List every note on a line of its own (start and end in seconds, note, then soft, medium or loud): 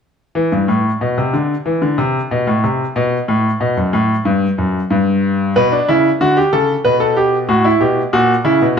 0.35 0.51 E3 medium
0.52 0.68 G2 medium
0.68 0.88 A2 medium
1.01 1.17 B2 medium
1.18 1.33 C3 medium
1.33 1.53 D3 medium
1.66 1.81 E3 medium
1.82 1.98 D3 medium
1.98 2.18 C3 medium
2.31 2.47 B2 medium
2.47 2.63 A2 medium
2.64 2.84 C3 medium
2.96 3.16 B2 medium
3.28 3.48 A2 medium
3.60 3.76 B2 medium
3.77 3.92 F#2 medium
3.93 4.13 A2 medium
4.25 4.45 G2 medium
4.58 4.78 F#2 medium
4.90 5.53 G2 medium
5.56 5.76 B2 medium
5.56 5.71 B4 medium
5.72 5.87 D4 medium
5.88 6.08 C#3 medium
5.88 6.08 E4 medium
6.21 6.40 D3 medium
6.21 6.36 F#4 medium
6.37 6.52 G4 medium
6.53 6.72 C#3 medium
6.53 6.72 A4 medium
6.85 7.47 B2 medium
6.85 7.00 B4 medium
7.00 7.16 A4 medium
7.17 7.36 G4 medium
7.48 7.68 A2 medium
7.48 7.64 F#4 medium
7.65 7.80 E4 medium
7.81 8.00 B2 medium
7.81 8.00 G4 medium
8.13 8.33 A#2 medium
8.13 8.33 F#4 medium
8.44 8.60 C#3 medium
8.44 8.65 E4 medium
8.61 8.77 B2 medium